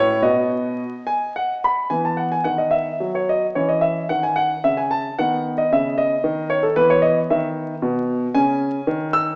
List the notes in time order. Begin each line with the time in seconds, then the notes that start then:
Already playing: A2 C#4 F#4 C#5
0.22 B2 B3 F#4 D#5
1.07 G#5
1.36 F#5
1.64 B5
1.90 E3 B3 G#5
2.05 A5
2.17 F#5
2.32 G#5
2.44 D#3 F#5
2.58 D#5
2.71 E5
3.00 F#3
3.15 C#5
3.29 D#5
3.55 E3 C#4 C#5
3.69 D#5
3.81 E5
4.09 D#3 F#5
4.23 G#5
4.36 F#5
4.64 C#3 E5
4.77 G#5
4.91 A5
5.18 D#3 B3 F#5
5.58 D#5
5.72 C#3 E5
5.98 D#5
6.24 D#3
6.50 C#5
6.63 A4
6.76 E3 B3 B4
6.90 C#5
7.02 D#5
7.30 D#3 E5
7.82 B2
8.35 C#3 C#4 G#5
8.87 D#3
9.13 E6